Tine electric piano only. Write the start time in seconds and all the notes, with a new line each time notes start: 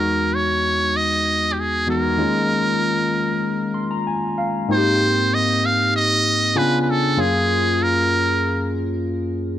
Already playing: E2 G#3 B3 D#4 F#4
1.87 E2 G#3 B3 D#4 F#4
2.17 D#3 G#3 A#3 C#4 F4
3.74 C6
3.91 A#5
4.07 G#5
4.38 F5
4.68 G#2 A#3 C4 D#4 F4
4.77 G4
6.55 C#3 B3 D4 F4 G#5
7.17 F#2 A#3 C#4 F4 G#4